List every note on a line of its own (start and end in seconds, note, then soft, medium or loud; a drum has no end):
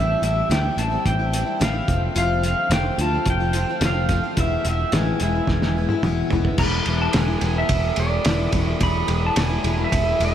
0.00 0.14 A1 loud
0.00 0.22 A2 medium
0.00 0.20 E3 medium
0.00 0.21 G3 medium
0.00 0.22 C4 medium
0.00 0.22 E4 medium
0.00 0.23 E5 medium
0.22 0.41 A1 medium
0.22 0.49 E3 medium
0.22 0.49 G3 medium
0.22 0.49 C4 medium
0.22 0.50 E4 medium
0.22 0.51 E5 medium
0.22 closed hi-hat medium
0.50 0.68 D2 medium
0.50 0.78 A2 medium
0.50 0.76 E3 medium
0.50 0.76 G3 medium
0.50 0.77 C4 medium
0.50 0.78 E4 medium
0.50 0.79 G5 medium
0.50 snare loud
0.50 closed hi-hat medium
0.77 0.96 A1 medium
0.77 0.91 E3 medium
0.77 0.91 G3 medium
0.77 0.91 C4 medium
0.77 0.89 E4 medium
0.77 1.06 A5 medium
0.77 closed hi-hat medium
0.90 1.20 G3 soft
0.90 1.18 C4 soft
0.90 1.18 E4 medium
1.05 1.42 A1 medium
1.05 1.63 G5 medium
1.05 kick medium
1.05 closed hi-hat medium
1.19 1.32 G3 soft
1.19 1.33 C4 soft
1.19 1.33 E4 soft
1.32 1.47 E3 medium
1.32 1.46 G3 medium
1.32 1.45 C4 medium
1.32 1.44 E4 medium
1.32 closed hi-hat medium
1.45 1.59 G3 soft
1.45 1.59 C4 soft
1.45 1.60 E4 medium
1.59 1.80 A1 medium
1.59 1.88 A2 medium
1.59 1.87 E3 medium
1.59 1.87 G3 medium
1.59 1.87 C4 medium
1.59 1.89 E4 medium
1.59 2.01 F5 medium
1.59 snare loud
1.59 closed hi-hat medium
1.87 2.07 F1 medium
1.87 2.14 F3 medium
1.87 2.15 A3 medium
1.87 2.15 C4 medium
1.87 2.15 F4 medium
1.87 kick loud
1.87 closed hi-hat medium
2.15 2.53 F1 medium
2.15 2.43 F2 medium
2.15 2.43 C3 medium
2.15 2.42 F3 medium
2.15 2.42 A3 medium
2.15 2.43 C4 medium
2.15 2.43 F4 medium
2.15 2.45 F5 medium
2.15 closed hi-hat medium
2.43 2.71 F3 medium
2.43 2.71 A3 medium
2.43 2.72 C4 medium
2.43 2.72 F4 medium
2.43 2.73 F5 medium
2.43 closed hi-hat medium
2.70 2.89 F1 medium
2.70 2.99 F2 medium
2.70 2.99 C3 medium
2.70 2.97 F3 medium
2.70 2.98 A3 medium
2.70 2.99 C4 medium
2.70 3.00 F4 medium
2.70 3.01 G5 medium
2.70 snare loud
2.70 closed hi-hat medium
2.98 3.17 D2 medium
2.98 3.13 F3 medium
2.98 3.13 A3 medium
2.98 3.13 C4 medium
2.98 3.12 F4 medium
2.98 3.29 A5 medium
2.98 closed hi-hat medium
3.13 3.41 F3 soft
3.13 3.40 A3 soft
3.13 3.39 C4 soft
3.13 3.39 F4 soft
3.26 3.64 F1 medium
3.26 kick medium
3.26 closed hi-hat medium
3.30 3.85 G5 medium
3.40 3.53 F3 soft
3.40 3.53 A3 soft
3.40 3.55 C4 soft
3.40 3.54 F4 soft
3.53 3.68 F3 medium
3.53 3.69 A3 medium
3.53 3.68 C4 medium
3.53 3.68 F4 medium
3.53 closed hi-hat medium
3.69 3.82 F3 soft
3.69 3.82 A3 soft
3.69 3.83 C4 medium
3.69 3.82 F4 medium
3.81 4.18 F1 medium
3.81 4.10 F2 medium
3.81 4.11 C3 medium
3.81 4.09 F3 medium
3.81 4.10 A3 medium
3.81 4.10 C4 medium
3.81 4.11 F4 medium
3.81 snare loud
3.81 closed hi-hat medium
3.86 4.23 F5 medium
4.09 4.24 F3 medium
4.09 4.24 A3 medium
4.09 4.23 C4 medium
4.09 4.22 F4 medium
4.09 kick medium
4.09 closed hi-hat medium
4.23 4.37 F3 soft
4.23 4.37 A3 soft
4.23 4.37 C4 soft
4.23 4.37 F4 medium
4.36 4.56 E1 loud
4.36 4.65 E2 medium
4.36 4.65 B2 medium
4.36 4.64 E3 medium
4.36 4.64 G#3 medium
4.36 4.65 B3 medium
4.36 4.66 E4 medium
4.36 4.67 E5 medium
4.36 kick loud
4.36 closed hi-hat medium
4.65 4.84 E1 medium
4.65 4.91 E3 medium
4.65 4.92 G#3 medium
4.65 4.92 B3 medium
4.65 4.93 E4 medium
4.65 closed hi-hat medium
4.69 4.96 E5 medium
4.92 5.11 A1 loud
4.92 5.20 E2 medium
4.92 5.21 B2 medium
4.92 5.19 E3 medium
4.92 5.20 G#3 medium
4.92 5.20 B3 medium
4.92 5.21 E4 medium
4.92 snare loud
4.92 closed hi-hat medium
4.97 5.22 G#5 medium
5.20 5.39 E1 medium
5.20 5.34 E3 medium
5.20 5.35 G#3 medium
5.20 5.34 B3 medium
5.20 5.33 E4 medium
5.20 6.29 G#5 medium
5.20 closed hi-hat medium
5.34 5.63 E3 soft
5.34 5.62 G#3 soft
5.34 5.62 B3 soft
5.34 5.61 E4 medium
5.47 5.85 E1 medium
5.47 kick medium
5.47 snare medium
5.62 5.75 E3 soft
5.62 5.75 G#3 soft
5.62 5.77 B3 medium
5.62 5.76 E4 medium
5.62 snare medium
5.77 5.90 E3 medium
5.77 5.90 G#3 medium
5.77 5.90 B3 medium
5.77 5.89 E4 medium
5.89 6.03 G#3 soft
5.89 6.03 B3 medium
5.89 6.03 E4 medium
5.89 high tom medium
5.93 6.02 E3 soft
6.03 6.22 E1 medium
6.03 6.31 E2 medium
6.03 6.31 B2 medium
6.03 6.30 E3 medium
6.03 6.30 G#3 loud
6.03 6.31 B3 medium
6.03 6.32 E4 loud
6.03 mid tom medium
6.30 6.49 E1 medium
6.30 6.58 E3 medium
6.30 6.59 G#3 medium
6.30 6.59 B3 medium
6.30 6.60 E4 medium
6.30 floor tom loud
6.45 floor tom medium
6.58 6.79 E1 loud
6.58 6.87 E2 medium
6.58 6.87 B2 medium
6.58 6.85 E3 medium
6.58 6.86 G#3 medium
6.58 6.87 B3 medium
6.58 6.87 E4 medium
6.58 7.01 B5 loud
6.58 kick loud
6.58 crash loud
6.86 7.07 E1 medium
6.86 7.13 E3 medium
6.86 7.14 G#3 medium
6.86 7.14 B3 medium
6.86 7.14 E4 medium
6.86 ride medium
7.02 7.15 A5 loud
7.13 7.35 E1 medium
7.13 7.28 E2 medium
7.13 7.28 B2 medium
7.13 7.28 E3 medium
7.13 7.28 G#3 medium
7.13 7.27 B3 medium
7.13 7.26 E4 medium
7.13 7.58 G#5 medium
7.13 snare loud
7.13 ride medium
7.28 7.40 E3 soft
7.28 7.41 G#3 soft
7.28 7.41 B3 soft
7.28 7.42 E4 medium
7.41 7.62 E1 medium
7.41 7.56 E3 medium
7.41 7.55 G#3 medium
7.41 7.55 B3 medium
7.41 7.54 E4 medium
7.41 ride medium
7.55 7.95 E3 soft
7.55 7.96 G#3 soft
7.55 7.96 B3 soft
7.55 7.97 E4 soft
7.55 8.00 E5 medium
7.69 7.90 E1 medium
7.69 kick medium
7.69 ride loud
7.96 8.18 E1 medium
7.96 8.24 E3 medium
7.96 8.25 G#3 medium
7.96 8.25 B3 medium
7.96 8.26 E4 medium
7.96 8.50 D5 medium
7.96 ride medium
8.25 8.46 E1 medium
8.25 8.53 E2 medium
8.25 8.53 B2 medium
8.25 8.52 E3 medium
8.25 8.53 G#3 medium
8.25 8.53 B3 medium
8.25 8.54 E4 medium
8.25 snare loud
8.25 ride loud
8.52 8.73 E1 medium
8.52 8.67 E3 medium
8.52 8.68 G#3 medium
8.52 8.67 B3 medium
8.52 8.66 E4 medium
8.52 kick medium
8.52 ride medium
8.68 8.80 E3 soft
8.68 8.80 G#3 soft
8.68 8.81 B3 soft
8.68 8.81 E4 soft
8.81 9.01 E1 medium
8.81 9.08 E2 medium
8.81 9.08 B2 medium
8.81 9.06 E3 medium
8.81 9.07 G#3 medium
8.81 9.08 B3 medium
8.81 9.08 E4 medium
8.81 9.25 B5 loud
8.81 kick loud
8.81 ride loud
9.07 9.29 E1 medium
9.07 9.35 E3 medium
9.07 9.35 G#3 medium
9.07 9.36 B3 medium
9.07 9.36 E4 medium
9.07 ride medium
9.27 9.39 A5 medium
9.36 9.57 E1 medium
9.36 9.50 E2 medium
9.36 9.50 B2 medium
9.36 9.50 E3 medium
9.36 9.49 G#3 medium
9.36 9.49 B3 medium
9.36 9.48 E4 medium
9.36 snare loud
9.36 ride loud
9.42 9.82 G#5 medium
9.49 9.62 E3 soft
9.49 9.63 G#3 soft
9.49 9.64 B3 soft
9.49 9.64 E4 medium
9.63 9.84 E1 medium
9.63 9.78 E3 medium
9.63 9.77 G#3 medium
9.63 9.77 B3 medium
9.63 9.76 E4 medium
9.63 ride medium
9.77 10.18 E3 soft
9.77 10.19 G#3 soft
9.77 10.19 B3 soft
9.77 10.19 E4 medium
9.84 10.23 E5 medium
9.92 10.12 E1 medium
9.92 kick medium
9.92 ride loud
10.19 10.35 E1 medium
10.19 10.35 E3 medium
10.19 10.35 G#3 medium
10.19 10.35 B3 medium
10.19 10.35 E4 medium
10.19 ride medium
10.25 10.35 E5 medium